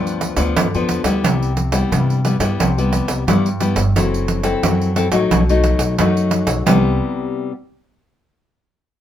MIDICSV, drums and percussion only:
0, 0, Header, 1, 2, 480
1, 0, Start_track
1, 0, Key_signature, 0, "major"
1, 0, Tempo, 677966
1, 881, Time_signature, 4, 2, 24, 8
1, 6377, End_track
2, 0, Start_track
2, 0, Title_t, "Pandeiro"
2, 48, Note_on_c, 9, 54, 36
2, 119, Note_off_c, 9, 54, 0
2, 148, Note_on_c, 9, 54, 60
2, 219, Note_off_c, 9, 54, 0
2, 259, Note_on_c, 9, 54, 71
2, 329, Note_off_c, 9, 54, 0
2, 400, Note_on_c, 9, 54, 90
2, 471, Note_off_c, 9, 54, 0
2, 527, Note_on_c, 9, 54, 35
2, 598, Note_off_c, 9, 54, 0
2, 628, Note_on_c, 9, 54, 61
2, 699, Note_off_c, 9, 54, 0
2, 738, Note_on_c, 9, 54, 73
2, 809, Note_off_c, 9, 54, 0
2, 881, Note_on_c, 9, 54, 88
2, 951, Note_off_c, 9, 54, 0
2, 1009, Note_on_c, 9, 54, 37
2, 1080, Note_off_c, 9, 54, 0
2, 1110, Note_on_c, 9, 54, 55
2, 1181, Note_off_c, 9, 54, 0
2, 1219, Note_on_c, 9, 54, 72
2, 1290, Note_off_c, 9, 54, 0
2, 1361, Note_on_c, 9, 54, 77
2, 1432, Note_off_c, 9, 54, 0
2, 1487, Note_on_c, 9, 54, 35
2, 1558, Note_off_c, 9, 54, 0
2, 1591, Note_on_c, 9, 54, 58
2, 1662, Note_off_c, 9, 54, 0
2, 1701, Note_on_c, 9, 54, 73
2, 1771, Note_off_c, 9, 54, 0
2, 1842, Note_on_c, 9, 54, 81
2, 1913, Note_off_c, 9, 54, 0
2, 1971, Note_on_c, 9, 54, 36
2, 2041, Note_off_c, 9, 54, 0
2, 2071, Note_on_c, 9, 54, 62
2, 2142, Note_off_c, 9, 54, 0
2, 2182, Note_on_c, 9, 54, 69
2, 2253, Note_off_c, 9, 54, 0
2, 2322, Note_on_c, 9, 54, 81
2, 2393, Note_off_c, 9, 54, 0
2, 2448, Note_on_c, 9, 54, 34
2, 2519, Note_off_c, 9, 54, 0
2, 2552, Note_on_c, 9, 54, 60
2, 2623, Note_off_c, 9, 54, 0
2, 2663, Note_on_c, 9, 54, 74
2, 2734, Note_off_c, 9, 54, 0
2, 2804, Note_on_c, 9, 54, 77
2, 2875, Note_off_c, 9, 54, 0
2, 2932, Note_on_c, 9, 54, 38
2, 3003, Note_off_c, 9, 54, 0
2, 3032, Note_on_c, 9, 54, 60
2, 3103, Note_off_c, 9, 54, 0
2, 3140, Note_on_c, 9, 54, 71
2, 3210, Note_off_c, 9, 54, 0
2, 3281, Note_on_c, 9, 54, 84
2, 3352, Note_off_c, 9, 54, 0
2, 3409, Note_on_c, 9, 54, 36
2, 3480, Note_off_c, 9, 54, 0
2, 3513, Note_on_c, 9, 54, 59
2, 3584, Note_off_c, 9, 54, 0
2, 3622, Note_on_c, 9, 54, 70
2, 3693, Note_off_c, 9, 54, 0
2, 3761, Note_on_c, 9, 54, 87
2, 3832, Note_off_c, 9, 54, 0
2, 3889, Note_on_c, 9, 54, 36
2, 3960, Note_off_c, 9, 54, 0
2, 3991, Note_on_c, 9, 54, 58
2, 4061, Note_off_c, 9, 54, 0
2, 4099, Note_on_c, 9, 54, 68
2, 4170, Note_off_c, 9, 54, 0
2, 4238, Note_on_c, 9, 54, 84
2, 4308, Note_off_c, 9, 54, 0
2, 4366, Note_on_c, 9, 54, 36
2, 4437, Note_off_c, 9, 54, 0
2, 4468, Note_on_c, 9, 54, 67
2, 4539, Note_off_c, 9, 54, 0
2, 4580, Note_on_c, 9, 54, 75
2, 4650, Note_off_c, 9, 54, 0
2, 4719, Note_on_c, 9, 54, 102
2, 4790, Note_off_c, 9, 54, 0
2, 6377, End_track
0, 0, End_of_file